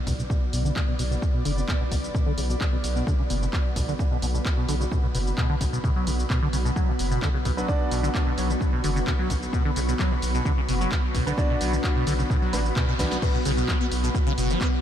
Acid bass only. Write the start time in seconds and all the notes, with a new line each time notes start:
0.07 B2
0.19 B2
0.30 B2
0.53 B2
0.65 D3
0.76 C#3
0.88 B2
0.99 B2
1.11 B2
1.34 B2
1.45 D3
1.57 C#3
1.68 B2
1.80 B2
1.91 B2
2.15 B2
2.26 D3
2.38 C#3
2.50 B2
2.61 B2
2.73 B2
2.96 B2
3.07 D3
3.19 C#3
3.30 B2
3.42 B2
3.53 B2
3.76 B2
3.88 D3
4.00 C#3
4.11 B2
4.22 B2
4.34 B2
4.57 B2
4.68 D3
4.81 C#3
4.92 B2
5.03 B2
5.15 B2
5.38 B2
5.50 D3
5.61 C#3
5.73 B2
5.84 B2
5.96 F#3
6.07 B2
6.30 B2
6.42 D3
6.53 C#3
6.65 B2
6.76 F#3
6.88 B2
7.11 B2
7.22 D3
7.34 C#3
7.45 B2
7.57 F#3
7.68 B2
7.92 B2
8.03 D3
8.15 C#3
8.27 B2
8.38 F#3
8.50 B2
8.73 B2
8.84 D3
8.96 C#3
9.07 B2
9.19 F#3
9.30 B2
9.53 B2
9.65 D3
9.76 C#3
9.88 B2
9.99 F#3
10.11 B2
10.35 B2
10.46 D3
10.58 C#3
10.69 B2
10.81 F#3
10.92 B2
11.15 B2
11.27 D3
11.38 C#3
11.50 B2
11.61 F#3
11.73 B2
11.96 B2
12.07 D3
12.19 C#3
12.30 B2
12.42 F#3
12.53 B3
12.76 B2
12.88 B2
12.99 E3
13.11 B3
13.22 B2
13.34 B2
13.45 C#3
13.57 B2
13.69 F#3
13.81 B3
14.04 B2
14.15 B2
14.27 C#3
14.38 B2
14.50 F#3
14.61 B3